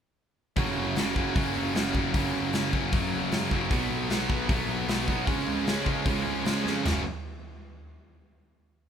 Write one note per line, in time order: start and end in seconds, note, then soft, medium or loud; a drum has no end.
0.56 0.75 F#1 medium
0.56 0.96 F#2 loud
0.56 0.96 C#3 loud
0.56 0.97 F#3 loud
0.56 0.98 A#3 loud
0.56 0.98 C#4 loud
0.56 kick loud
0.56 open hi-hat medium
0.76 0.94 F#1 medium
0.96 1.31 F#1 medium
0.96 1.16 F#2 medium
0.96 1.16 C#3 medium
0.96 1.17 F#3 medium
0.96 1.17 A#3 loud
0.96 1.18 C#4 loud
0.96 snare loud
0.96 open hi-hat medium
1.16 1.33 F#2 loud
1.16 1.33 C#3 medium
1.16 1.35 F#3 loud
1.16 1.35 A#3 loud
1.16 1.35 C#4 loud
1.16 kick medium
1.34 1.53 F#1 medium
1.34 1.72 F#2 medium
1.34 1.72 C#3 loud
1.34 1.74 F#3 medium
1.34 1.73 A#3 medium
1.34 1.74 C#4 loud
1.34 kick loud
1.34 open hi-hat medium
1.56 1.73 F#1 medium
1.73 1.92 F#1 medium
1.73 1.92 F#2 medium
1.73 1.93 C#3 medium
1.73 1.94 F#3 medium
1.73 1.94 A#3 medium
1.73 1.95 C#4 loud
1.73 snare loud
1.73 open hi-hat medium
1.93 2.12 F#1 medium
1.93 2.12 F#2 medium
1.93 2.13 C#3 loud
1.93 2.14 F#3 medium
1.93 2.14 A#3 loud
1.93 2.14 C#4 medium
1.93 kick loud
2.13 2.32 F#1 medium
2.13 2.52 F#2 loud
2.13 2.52 C#3 loud
2.13 2.54 F#3 loud
2.13 2.54 A#3 loud
2.13 2.54 C#4 loud
2.13 kick loud
2.13 open hi-hat medium
2.34 2.52 F#1 medium
2.53 2.89 F#1 medium
2.53 2.70 F#2 medium
2.53 2.71 C#3 medium
2.53 2.72 F#3 loud
2.53 2.72 A#3 loud
2.53 2.73 C#4 loud
2.53 snare loud
2.53 open hi-hat medium
2.71 2.90 F#2 medium
2.71 2.91 C#3 medium
2.71 2.91 F#3 loud
2.71 2.92 A#3 loud
2.71 2.93 C#4 loud
2.71 kick medium
2.91 3.10 F#1 medium
2.91 3.29 F#2 medium
2.91 3.30 C#3 medium
2.91 3.31 F#3 loud
2.91 3.31 A#3 loud
2.91 3.32 C#4 loud
2.91 kick loud
2.91 open hi-hat medium
3.14 3.31 F#1 medium
3.30 3.50 F#1 medium
3.30 3.48 F#2 medium
3.30 3.50 C#3 medium
3.30 3.50 F#3 medium
3.30 3.51 A#3 medium
3.30 3.51 C#4 medium
3.30 snare loud
3.30 open hi-hat medium
3.50 3.69 F#1 loud
3.50 3.69 F#2 medium
3.50 3.69 C#3 medium
3.50 3.70 F#3 medium
3.50 3.70 A#3 loud
3.50 3.70 C#4 medium
3.50 kick loud
3.71 3.88 B1 loud
3.71 4.08 B2 loud
3.71 4.09 F#3 loud
3.71 4.09 B3 loud
3.71 4.10 D#4 loud
3.71 kick loud
3.71 open hi-hat medium
3.90 4.08 B1 medium
4.09 4.45 B1 medium
4.09 4.28 B2 medium
4.09 4.28 F#3 loud
4.09 4.29 B3 loud
4.09 4.29 D#4 loud
4.09 snare loud
4.09 open hi-hat medium
4.29 4.46 B2 loud
4.29 4.47 F#3 loud
4.29 4.47 B3 loud
4.29 4.48 D#4 loud
4.29 kick loud
4.47 4.67 B1 loud
4.47 4.86 B2 medium
4.47 4.86 F#3 medium
4.47 4.87 B3 loud
4.47 4.87 D#4 loud
4.47 kick loud
4.47 open hi-hat medium
4.69 4.86 B1 loud
4.87 5.06 B1 medium
4.87 5.05 B2 medium
4.87 5.05 F#3 medium
4.87 5.06 B3 medium
4.87 5.06 D#4 medium
4.87 snare loud
4.87 open hi-hat medium
5.06 5.27 B1 medium
5.06 5.25 B2 medium
5.06 5.25 F#3 medium
5.06 5.26 B3 loud
5.06 5.26 D#4 loud
5.06 kick loud
5.25 5.45 C#2 medium
5.25 5.63 C#3 medium
5.25 5.64 F3 loud
5.25 5.65 G#3 loud
5.25 5.65 C#4 loud
5.25 kick loud
5.25 open hi-hat medium
5.47 5.65 C#2 medium
5.64 6.02 C#2 medium
5.64 5.83 C#3 medium
5.64 5.83 F3 loud
5.64 5.84 G#3 loud
5.64 5.84 C#4 loud
5.64 snare loud
5.64 open hi-hat medium
5.84 6.02 C#3 medium
5.84 6.04 F3 medium
5.84 6.04 G#3 loud
5.84 6.04 C#4 medium
5.84 kick medium
6.04 6.24 C#2 medium
6.04 6.42 C#3 loud
6.04 6.43 F3 medium
6.04 6.44 G#3 loud
6.04 6.45 C#4 loud
6.04 kick loud
6.04 open hi-hat medium
6.26 6.44 C#2 medium
6.43 6.63 C#2 loud
6.43 6.62 C#3 medium
6.43 6.63 F3 loud
6.43 6.63 G#3 medium
6.43 6.64 C#4 medium
6.43 snare loud
6.43 open hi-hat medium
6.63 6.83 F2 medium
6.63 6.83 C#3 medium
6.63 6.83 F3 medium
6.63 6.83 G#3 medium
6.63 6.83 C#4 medium
6.63 snare medium
6.83 7.04 F#1 medium
6.83 7.01 F#2 loud
6.83 7.02 C#3 loud
6.83 7.00 F#3 loud
6.83 7.00 A#3 loud
6.83 7.00 C#4 loud
6.83 7.01 F#4 loud
6.83 snare loud
6.83 floor tom loud
6.83 china medium